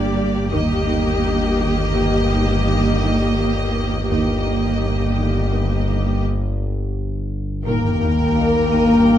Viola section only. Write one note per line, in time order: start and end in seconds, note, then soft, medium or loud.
0.00 0.50 A#3 soft
0.00 0.50 G4 soft
0.55 4.07 A#3 soft
0.55 4.07 G4 soft
4.10 6.20 A#3 soft
4.10 6.20 G4 soft
7.67 9.18 A#4 soft